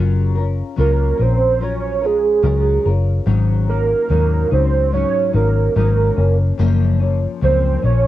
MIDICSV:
0, 0, Header, 1, 4, 480
1, 0, Start_track
1, 0, Tempo, 830795
1, 1886, Time_signature, 4, 2, 24, 8
1, 4664, End_track
2, 0, Start_track
2, 0, Title_t, "Soft synth lead"
2, 0, Program_c, 0, 80
2, 458, Note_on_c, 0, 70, 92
2, 703, Note_on_c, 0, 72, 104
2, 711, Note_off_c, 0, 70, 0
2, 942, Note_on_c, 0, 73, 117
2, 951, Note_off_c, 0, 72, 0
2, 1185, Note_on_c, 0, 68, 97
2, 1194, Note_off_c, 0, 73, 0
2, 1656, Note_off_c, 0, 68, 0
2, 2133, Note_on_c, 0, 70, 101
2, 2587, Note_off_c, 0, 70, 0
2, 2617, Note_on_c, 0, 72, 103
2, 2835, Note_off_c, 0, 72, 0
2, 2851, Note_on_c, 0, 73, 121
2, 3072, Note_off_c, 0, 73, 0
2, 3091, Note_on_c, 0, 70, 88
2, 3312, Note_off_c, 0, 70, 0
2, 3331, Note_on_c, 0, 70, 96
2, 3678, Note_off_c, 0, 70, 0
2, 4297, Note_on_c, 0, 72, 116
2, 4516, Note_off_c, 0, 72, 0
2, 4535, Note_on_c, 0, 73, 103
2, 4664, Note_off_c, 0, 73, 0
2, 4664, End_track
3, 0, Start_track
3, 0, Title_t, "Nylon-string guitar"
3, 0, Program_c, 1, 24
3, 0, Note_on_c, 1, 54, 87
3, 0, Note_on_c, 1, 61, 97
3, 0, Note_on_c, 1, 65, 96
3, 0, Note_on_c, 1, 70, 104
3, 196, Note_off_c, 1, 70, 0
3, 203, Note_on_c, 1, 70, 61
3, 205, Note_off_c, 1, 54, 0
3, 205, Note_off_c, 1, 65, 0
3, 208, Note_off_c, 1, 61, 0
3, 212, Note_on_c, 1, 65, 53
3, 220, Note_on_c, 1, 61, 48
3, 439, Note_off_c, 1, 61, 0
3, 440, Note_on_c, 1, 54, 80
3, 443, Note_off_c, 1, 65, 0
3, 445, Note_off_c, 1, 70, 0
3, 446, Note_on_c, 1, 61, 88
3, 450, Note_on_c, 1, 65, 84
3, 453, Note_on_c, 1, 70, 94
3, 671, Note_off_c, 1, 70, 0
3, 678, Note_on_c, 1, 70, 64
3, 682, Note_off_c, 1, 65, 0
3, 683, Note_off_c, 1, 54, 0
3, 686, Note_off_c, 1, 61, 0
3, 689, Note_on_c, 1, 65, 53
3, 696, Note_on_c, 1, 61, 45
3, 921, Note_off_c, 1, 61, 0
3, 922, Note_off_c, 1, 70, 0
3, 922, Note_on_c, 1, 54, 55
3, 928, Note_off_c, 1, 65, 0
3, 928, Note_on_c, 1, 61, 65
3, 935, Note_on_c, 1, 65, 62
3, 939, Note_on_c, 1, 70, 67
3, 1157, Note_off_c, 1, 70, 0
3, 1163, Note_on_c, 1, 70, 46
3, 1164, Note_off_c, 1, 54, 0
3, 1167, Note_off_c, 1, 61, 0
3, 1167, Note_off_c, 1, 65, 0
3, 1174, Note_on_c, 1, 65, 49
3, 1182, Note_on_c, 1, 61, 44
3, 1398, Note_off_c, 1, 61, 0
3, 1400, Note_on_c, 1, 54, 83
3, 1403, Note_off_c, 1, 65, 0
3, 1405, Note_off_c, 1, 70, 0
3, 1405, Note_on_c, 1, 61, 77
3, 1410, Note_on_c, 1, 65, 92
3, 1412, Note_on_c, 1, 70, 94
3, 1641, Note_off_c, 1, 70, 0
3, 1644, Note_off_c, 1, 54, 0
3, 1646, Note_off_c, 1, 61, 0
3, 1648, Note_off_c, 1, 65, 0
3, 1648, Note_on_c, 1, 70, 62
3, 1656, Note_on_c, 1, 65, 49
3, 1663, Note_on_c, 1, 61, 44
3, 1882, Note_on_c, 1, 44, 101
3, 1883, Note_off_c, 1, 61, 0
3, 1887, Note_off_c, 1, 70, 0
3, 1887, Note_on_c, 1, 54, 90
3, 1889, Note_on_c, 1, 61, 95
3, 1891, Note_off_c, 1, 65, 0
3, 1894, Note_on_c, 1, 63, 97
3, 2116, Note_off_c, 1, 63, 0
3, 2123, Note_on_c, 1, 63, 51
3, 2124, Note_off_c, 1, 44, 0
3, 2126, Note_off_c, 1, 61, 0
3, 2127, Note_off_c, 1, 54, 0
3, 2133, Note_on_c, 1, 61, 52
3, 2141, Note_on_c, 1, 54, 51
3, 2360, Note_off_c, 1, 54, 0
3, 2361, Note_on_c, 1, 44, 80
3, 2363, Note_off_c, 1, 61, 0
3, 2365, Note_off_c, 1, 63, 0
3, 2367, Note_on_c, 1, 54, 84
3, 2370, Note_on_c, 1, 61, 89
3, 2375, Note_on_c, 1, 63, 85
3, 2598, Note_off_c, 1, 63, 0
3, 2604, Note_off_c, 1, 44, 0
3, 2605, Note_on_c, 1, 63, 59
3, 2607, Note_off_c, 1, 54, 0
3, 2608, Note_off_c, 1, 61, 0
3, 2615, Note_on_c, 1, 61, 50
3, 2620, Note_on_c, 1, 54, 51
3, 2841, Note_on_c, 1, 44, 57
3, 2842, Note_off_c, 1, 54, 0
3, 2846, Note_off_c, 1, 63, 0
3, 2849, Note_off_c, 1, 61, 0
3, 2849, Note_on_c, 1, 54, 70
3, 2856, Note_on_c, 1, 61, 65
3, 2860, Note_on_c, 1, 63, 67
3, 3073, Note_off_c, 1, 63, 0
3, 3079, Note_off_c, 1, 61, 0
3, 3080, Note_on_c, 1, 63, 54
3, 3084, Note_off_c, 1, 44, 0
3, 3086, Note_on_c, 1, 61, 48
3, 3088, Note_off_c, 1, 54, 0
3, 3097, Note_on_c, 1, 54, 45
3, 3321, Note_off_c, 1, 54, 0
3, 3323, Note_off_c, 1, 63, 0
3, 3324, Note_on_c, 1, 44, 84
3, 3326, Note_off_c, 1, 61, 0
3, 3328, Note_on_c, 1, 54, 82
3, 3332, Note_on_c, 1, 61, 82
3, 3335, Note_on_c, 1, 63, 103
3, 3554, Note_off_c, 1, 61, 0
3, 3558, Note_off_c, 1, 63, 0
3, 3561, Note_on_c, 1, 61, 59
3, 3565, Note_off_c, 1, 44, 0
3, 3567, Note_off_c, 1, 54, 0
3, 3571, Note_on_c, 1, 58, 45
3, 3580, Note_on_c, 1, 53, 46
3, 3799, Note_off_c, 1, 53, 0
3, 3799, Note_on_c, 1, 42, 92
3, 3803, Note_off_c, 1, 58, 0
3, 3804, Note_off_c, 1, 61, 0
3, 3806, Note_on_c, 1, 53, 97
3, 3810, Note_on_c, 1, 58, 91
3, 3813, Note_on_c, 1, 61, 102
3, 4033, Note_off_c, 1, 61, 0
3, 4040, Note_on_c, 1, 61, 55
3, 4043, Note_off_c, 1, 42, 0
3, 4043, Note_off_c, 1, 58, 0
3, 4047, Note_off_c, 1, 53, 0
3, 4050, Note_on_c, 1, 58, 55
3, 4060, Note_on_c, 1, 53, 48
3, 4281, Note_off_c, 1, 53, 0
3, 4282, Note_on_c, 1, 42, 73
3, 4283, Note_off_c, 1, 61, 0
3, 4285, Note_off_c, 1, 58, 0
3, 4288, Note_on_c, 1, 53, 78
3, 4292, Note_on_c, 1, 58, 77
3, 4294, Note_on_c, 1, 61, 72
3, 4513, Note_off_c, 1, 61, 0
3, 4520, Note_on_c, 1, 61, 61
3, 4522, Note_off_c, 1, 58, 0
3, 4525, Note_off_c, 1, 42, 0
3, 4527, Note_off_c, 1, 53, 0
3, 4529, Note_on_c, 1, 58, 55
3, 4537, Note_on_c, 1, 53, 47
3, 4664, Note_off_c, 1, 53, 0
3, 4664, Note_off_c, 1, 58, 0
3, 4664, Note_off_c, 1, 61, 0
3, 4664, End_track
4, 0, Start_track
4, 0, Title_t, "Fingered electric bass"
4, 0, Program_c, 2, 33
4, 0, Note_on_c, 2, 30, 115
4, 354, Note_off_c, 2, 30, 0
4, 452, Note_on_c, 2, 37, 92
4, 642, Note_off_c, 2, 37, 0
4, 690, Note_on_c, 2, 34, 74
4, 1385, Note_off_c, 2, 34, 0
4, 1407, Note_on_c, 2, 37, 112
4, 1599, Note_off_c, 2, 37, 0
4, 1650, Note_on_c, 2, 30, 96
4, 1841, Note_off_c, 2, 30, 0
4, 1885, Note_on_c, 2, 32, 122
4, 2270, Note_off_c, 2, 32, 0
4, 2369, Note_on_c, 2, 39, 80
4, 2560, Note_off_c, 2, 39, 0
4, 2611, Note_on_c, 2, 37, 91
4, 2907, Note_off_c, 2, 37, 0
4, 3087, Note_on_c, 2, 32, 115
4, 3279, Note_off_c, 2, 32, 0
4, 3329, Note_on_c, 2, 32, 111
4, 3520, Note_off_c, 2, 32, 0
4, 3569, Note_on_c, 2, 30, 109
4, 3760, Note_off_c, 2, 30, 0
4, 3810, Note_on_c, 2, 30, 121
4, 4193, Note_off_c, 2, 30, 0
4, 4289, Note_on_c, 2, 37, 94
4, 4480, Note_off_c, 2, 37, 0
4, 4528, Note_on_c, 2, 34, 85
4, 4664, Note_off_c, 2, 34, 0
4, 4664, End_track
0, 0, End_of_file